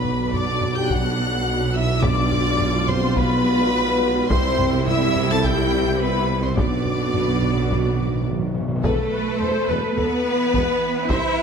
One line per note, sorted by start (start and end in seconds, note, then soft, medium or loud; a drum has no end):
0.00 4.26 B1 medium
0.00 4.27 B1 medium
0.00 4.26 B2 medium
0.00 2.00 F#3 medium
0.00 0.33 B3 medium
0.00 2.00 D4 medium
0.00 0.35 B4 medium
0.00 0.33 B5 medium
0.04 taiko low-mid soft
0.33 0.76 D4 medium
0.33 0.76 D5 medium
0.33 0.76 D6 medium
0.33 taiko low-mid medium
0.62 taiko low-mid soft
0.74 0.90 G4 medium
0.74 0.91 G5 medium
0.74 0.90 G6 medium
0.87 1.75 F#4 medium
0.87 1.74 F#6 medium
0.87 taiko medium
0.92 1.76 F#5 medium
1.73 2.04 E4 medium
1.73 2.04 E5 medium
1.73 2.03 E6 medium
2.01 6.52 G3 medium
2.01 2.88 D4 medium
2.01 4.26 F4 medium
2.01 2.89 D5 medium
2.01 2.87 D6 loud
2.01 taiko loud
2.32 taiko low-mid soft
2.60 taiko low-mid medium
2.88 3.17 C4 medium
2.88 3.18 C5 medium
2.88 3.17 C6 loud
2.88 taiko low-mid soft
3.16 4.31 B3 loud
3.16 4.31 B4 loud
3.16 4.28 B5 loud
3.16 taiko medium
4.28 6.53 C2 medium
4.28 6.60 C2 medium
4.28 6.53 C3 medium
4.28 4.87 C4 medium
4.28 6.53 E4 medium
4.28 4.86 C5 medium
4.28 4.85 C6 loud
4.28 taiko loud
4.59 taiko low-mid medium
4.86 5.29 E4 medium
4.86 5.29 E5 medium
4.86 5.28 E6 loud
4.86 taiko low-mid medium
5.15 taiko low-mid soft
5.31 5.44 A4 medium
5.31 5.44 A5 medium
5.31 5.44 A6 medium
5.44 6.01 G4 medium
5.44 6.01 G5 medium
5.44 6.00 G6 medium
5.44 taiko medium
6.00 6.31 B3 medium
6.00 6.42 B4 medium
6.00 6.42 B5 medium
6.43 6.57 C4 medium
6.43 6.58 C5 medium
6.43 6.58 C6 medium
6.56 8.64 B1 medium
6.56 8.64 B2 medium
6.56 8.60 B3 medium
6.56 8.24 D4 medium
6.56 8.60 F#4 medium
6.56 8.27 D5 medium
6.56 8.23 D6 medium
6.56 taiko loud
6.80 6.87 B2 soft
6.86 6.94 B2 soft
6.86 taiko low-mid soft
6.95 7.00 B2 soft
7.02 7.08 B2 soft
7.14 7.23 B2 soft
7.14 taiko low-mid medium
7.25 7.31 B2 soft
7.32 7.38 B2 soft
7.39 7.46 B2 soft
7.39 taiko low-mid soft
7.54 7.61 B2 soft
7.62 7.69 B2 medium
7.71 7.77 B2 medium
7.71 taiko medium
7.78 7.84 B2 medium
7.85 7.92 B2 medium
7.94 7.99 B2 medium
8.01 8.06 B2 medium
8.07 8.14 B2 medium
8.15 8.22 B2 medium
8.23 8.29 B2 medium
8.31 8.37 B2 medium
8.39 8.45 B2 medium
8.46 8.52 B2 medium
8.54 8.59 B2 medium
8.60 8.67 B2 medium
8.69 8.75 B2 medium
8.76 8.82 B2 loud
8.83 8.96 E1 medium
8.83 8.92 E2 medium
8.83 11.43 E3 medium
8.83 9.93 A3 medium
8.83 11.06 B3 medium
8.83 9.10 A4 medium
8.83 9.93 A4 medium
8.83 9.10 B4 medium
8.83 taiko loud
9.13 9.40 B4 medium
9.41 9.53 E1 soft
9.41 9.49 E2 soft
9.41 9.50 B4 soft
9.41 9.68 C5 medium
9.68 9.81 E1 medium
9.68 9.77 E2 medium
9.68 9.96 B4 medium
9.68 9.95 B4 medium
9.96 10.08 E1 soft
9.96 10.05 E2 medium
9.96 11.10 B3 medium
9.96 10.25 A4 medium
9.96 11.10 B4 medium
9.96 10.05 B4 soft
9.96 taiko low medium
10.26 11.09 B4 medium
10.53 10.65 E1 medium
10.53 10.61 E2 medium
10.53 10.80 B4 medium
10.53 taiko medium
11.08 11.21 C2 medium
11.08 11.17 C2 medium
11.08 11.43 C4 medium
11.08 11.43 E4 medium
11.08 11.35 C5 medium
11.08 11.38 C5 medium
11.08 11.43 E5 medium
11.08 taiko medium
11.37 11.43 B4 medium